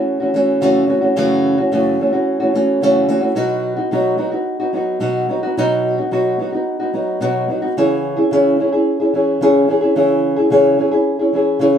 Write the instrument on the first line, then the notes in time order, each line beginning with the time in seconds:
nylon-string guitar
Already playing: E3 A3 C#4 F#4
0.20 E3 A3 C#4 F#4
0.34 E3 A3 C#4 F#4
0.61 F#2 C#3 E3 A3 C#4 F#4
0.87 E3 A3 C#4 F#4
1.01 E3 A3 C#4 F#4
1.16 F#2 C#3 E3 A3 C#4 F#4
1.58 E3 A3 C#4 F#4
1.72 F#2 C#3 E3 A3 C#4 F#4
2.00 E3 A3 C#4 F#4
2.13 E3 A3 C#4 F#4
2.40 E3 A3 C#4 F#4
2.54 E3 A3 C#4 F#4
2.81 F#2 C#3 E3 A3 C#4 F#4
3.08 E3 A3 C#4 F#4
3.21 E3 A3 C#4 F#4
3.35 B2 F#3 B3 D#4 F#4
3.76 B3 D#4 F#4
3.91 B2 F#3 B3 D#4 F#4
4.17 F#3 B3 D#4 F#4
4.31 B3 D#4 F#4
4.60 B3 D#4 F#4
4.73 F#3 B3 D#4 F#4
5.00 B2 F#3 B3 D#4 F#4
5.29 F#3 B3 D#4 F#4
5.43 B3 D#4 F#4
5.57 B2 F#3 B3 D#4 F#4
5.98 B3 D#4 F#4
6.11 B2 F#3 B3 D#4 F#4
6.39 F#3 B3 D#4 F#4
6.53 B3 D#4 F#4
6.80 B3 D#4 F#4
6.93 F#3 B3 D#4 F#4
7.21 B2 F#3 B3 D#4 F#4
7.49 F#3 B3 D#4 F#4
7.62 B3 D#4 F#4
7.77 C#3 E3 C#4 E4 G#4
8.16 C#4 E4 G#4
8.31 C#3 E3 C#4 E4 G#4
8.59 E3 C#4 E4 G#4
8.73 C#4 E4 G#4
9.00 C#4 E4 G#4
9.13 E3 C#4 E4 G#4
9.41 C#3 E3 C#4 E4 G#4
9.68 E3 C#4 E4 G#4
9.81 C#4 E4 G#4
9.96 C#3 E3 C#4 E4 G#4
10.36 C#4 E4 G#4
10.50 C#3 E3 C#4 E4 G#4
10.78 E3 C#4 E4 G#4
10.91 C#4 E4 G#4
11.19 C#4 E4 G#4
11.33 E3 C#4 E4 G#4
11.59 C#3 E3 C#4 E4 G#4